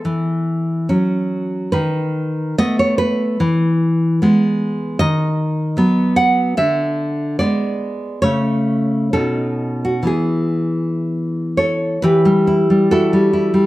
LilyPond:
\new Staff \with { instrumentName = "Nylon-string guitar" } { \time 2/4 \key e \major \tempo 4 = 71 << { a'2 | b'4 dis''16 cis''16 b'8~ | b'2 | dis''4. fis''8 |
e''4 d''4 | cis''4 a'8. fis'16 | gis'4. <a' cis''>8 | \key e \minor <g' b'>4 <fis' a'>4 | } \\ { e4 <fis cis'>4 | dis4 <a b>4 | e4 <gis b>4 | dis4 <fis b>4 |
d4 <gis b>4 | <cis a cis'>4 <b, cis' dis'>4 | <e b e'>2 | e16 g16 e'16 g16 e'16 g16 e'16 g16 | } >> }